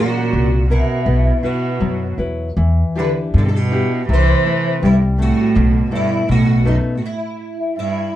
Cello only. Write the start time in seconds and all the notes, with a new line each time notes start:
Already playing: A#2
0.70 B2
1.42 B2
2.98 D3
3.36 D3
3.46 C3
3.53 B2
4.08 E3
4.84 G2
5.19 A2
5.91 G2
6.27 A2
6.65 F#2
6.95 A2
7.77 G2